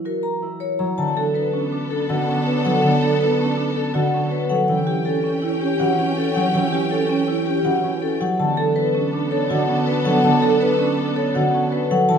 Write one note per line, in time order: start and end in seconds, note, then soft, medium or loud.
0.00 1.00 E3 medium
0.00 0.78 F#3 medium
0.00 1.00 C#4 soft
0.05 0.30 F#4 soft
0.05 0.30 A#4 soft
0.23 0.48 A#5 medium
0.42 1.00 E4 soft
0.60 0.85 A#4 soft
0.60 0.85 C#5 medium
0.79 2.64 F#3 medium
0.79 1.04 A#5 medium
0.98 2.08 D3 medium
0.98 4.46 B3 medium
0.98 1.11 D4 soft
0.98 4.46 A4 medium
0.98 1.22 A5 medium
1.17 1.30 D4 soft
1.17 1.41 A4 medium
1.34 1.49 D4 soft
1.34 1.59 B4 soft
1.34 1.59 B4 medium
1.53 1.78 C#4 medium
1.53 1.67 D4 soft
1.72 1.96 D4 medium
1.72 1.86 D4 soft
1.90 2.04 D4 medium
1.90 2.15 A4 medium
2.09 2.82 D3 medium
2.09 2.23 D4 medium
2.09 2.33 F#4 medium
2.09 2.34 F#5 medium
2.28 4.12 C#4 medium
2.28 2.41 D4 medium
2.47 2.60 D4 medium
2.47 2.71 B4 medium
2.65 4.49 F#3 medium
2.65 2.78 D4 medium
2.65 2.89 A4 medium
2.65 2.89 F#5 medium
2.83 3.93 D3 medium
2.83 2.96 D4 medium
2.83 3.08 A5 medium
3.02 3.15 D4 medium
3.02 3.26 A4 medium
3.20 3.33 D4 medium
3.20 3.45 B4 soft
3.20 3.45 B4 medium
3.39 3.63 C#4 medium
3.39 3.53 D4 medium
3.57 3.82 D4 medium
3.57 3.71 D4 medium
3.76 3.89 D4 soft
3.76 4.00 A4 medium
3.94 4.70 D3 medium
3.94 4.07 D4 soft
3.94 4.18 F#4 medium
3.94 4.19 F#5 medium
4.13 5.97 C#4 medium
4.13 4.26 D4 soft
4.32 4.45 D4 soft
4.32 4.56 B4 medium
4.49 4.70 F#3 medium
4.49 4.74 A4 medium
4.49 4.74 F#5 medium
4.68 5.79 E3 medium
4.68 8.16 C#4 medium
4.68 4.82 C#4 soft
4.68 4.93 G5 medium
4.68 8.16 G5 medium
4.87 5.00 C#4 soft
4.87 5.11 G4 medium
5.05 5.19 C#4 soft
5.05 5.30 A4 medium
5.05 5.30 A4 soft
5.24 5.48 C#4 medium
5.24 5.37 C#4 medium
5.42 5.56 C#4 medium
5.42 5.67 E4 medium
5.61 5.75 C#4 medium
5.61 5.85 G4 medium
5.79 6.53 E3 medium
5.79 5.93 C#4 medium
5.79 6.04 F#4 medium
5.79 6.04 F#5 medium
5.98 7.83 C#4 medium
5.98 6.11 C#4 medium
6.17 6.30 C#4 medium
6.17 6.41 A4 medium
6.35 8.20 F#3 medium
6.35 6.48 C#4 medium
6.35 6.60 G4 medium
6.35 6.59 F#5 medium
6.54 7.64 E3 medium
6.54 6.67 C#4 medium
6.54 6.78 G5 medium
6.72 6.85 C#4 medium
6.72 6.96 G4 medium
6.91 7.04 C#4 medium
6.91 7.15 A4 medium
7.09 7.33 C#4 medium
7.09 7.23 C#4 medium
7.28 7.42 C#4 medium
7.28 7.52 E4 medium
7.46 7.60 C#4 medium
7.46 7.70 G4 medium
7.65 8.41 E3 medium
7.65 7.79 C#4 soft
7.65 7.89 F#4 medium
7.65 7.89 F#5 medium
7.84 8.41 C#4 medium
7.84 7.97 C#4 soft
8.02 8.16 C#4 soft
8.02 8.26 A4 medium
8.21 10.04 F#3 medium
8.21 8.45 G4 medium
8.21 8.45 F#5 medium
8.39 9.49 D3 medium
8.39 11.87 B3 medium
8.39 8.52 D4 soft
8.39 11.87 A4 medium
8.39 8.63 A5 medium
8.57 8.71 D4 soft
8.57 8.82 A4 medium
8.76 8.89 D4 soft
8.76 9.00 B4 medium
8.95 9.19 C#4 medium
8.95 9.08 D4 medium
9.13 9.37 D4 medium
9.13 9.27 D4 medium
9.31 9.45 D4 medium
9.31 9.56 A4 medium
9.31 9.56 C#5 medium
9.50 10.23 D3 medium
9.50 9.63 D4 medium
9.50 9.74 F#4 medium
9.50 9.74 F#5 medium
9.68 11.53 C#4 medium
9.68 9.82 D4 medium
9.87 10.00 D4 medium
9.87 10.11 B4 medium
10.05 11.90 F#3 medium
10.05 10.19 D4 medium
10.05 10.29 A4 medium
10.05 10.30 F#5 medium
10.24 11.34 D3 medium
10.24 10.37 D4 medium
10.24 10.48 A5 medium
10.42 10.56 D4 medium
10.42 10.67 A4 medium
10.61 10.74 D4 medium
10.61 10.85 B4 medium
10.79 11.04 C#4 medium
10.79 10.92 D4 medium
10.98 11.22 D4 medium
10.98 11.11 D4 medium
11.16 11.30 D4 medium
11.16 11.41 A4 medium
11.16 11.41 C#5 medium
11.34 12.11 D3 medium
11.34 11.48 D4 medium
11.34 11.59 F#4 medium
11.34 11.59 F#5 medium
11.53 12.18 C#4 medium
11.53 11.67 D4 soft
11.72 11.85 D4 soft
11.72 11.96 B4 medium
11.91 12.18 F#3 medium
11.91 12.15 A4 medium
11.91 12.15 F#5 medium
12.09 12.18 E3 medium
12.09 12.18 E4 soft
12.09 12.18 E4 medium
12.09 12.18 F#4 medium
12.09 12.18 A5 medium